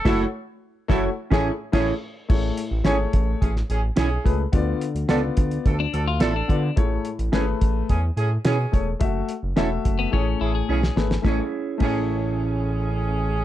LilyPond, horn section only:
\new Staff \with { instrumentName = "Horn section" } { \time 4/4 \key a \major \tempo 4 = 107 <fis e' a'>8 r4 <fis e' a'>8 r16 <e cis' gis'>8 r16 <e cis' gis'>8 r8 | r4 <e cis' gis'>16 r8. <e cis' gis'>16 r16 <e cis' gis'>16 r16 <e cis' gis'>8. r16 | r4 <f d' a'>16 r8. <f d' a'>16 r16 <f d' a'>16 r16 <f d' a'>8. r16 | r4 <e cis' gis'>16 r8. <e cis' gis'>16 r16 <e cis' gis'>16 r16 <e cis' gis'>8. r16 |
r4 <fis e' a'>16 r8. <e cis' gis'>16 r16 <e cis' gis'>16 r16 <e cis' gis'>8. r16 | <e cis' gis'>8 r8 <e cis' gis'>2. | }